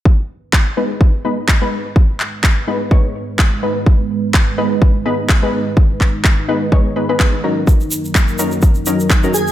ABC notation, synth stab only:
X:1
M:4/4
L:1/16
Q:"Swing 16ths" 1/4=126
K:F#mix
V:1 name="Synth stab"
z6 [G,B,DB]4 [G,B,DB] z2 [G,B,DB]2 z | z6 [G,B,DB]2 [G,B,Dc]2 z4 [G,B,DB]2- | [G,B,DB]6 [G,B,DB]4 [G,B,DB] z2 [G,B,DB]2 z | z6 [G,B,DB]2 [G,B,Dc]2 [G,B,DB] [G,B,DB] G, z [F,CDA]2- |
[F,CDA]6 [F,CDA]4 [F,CDA] z2 [F,CDA]2 z |]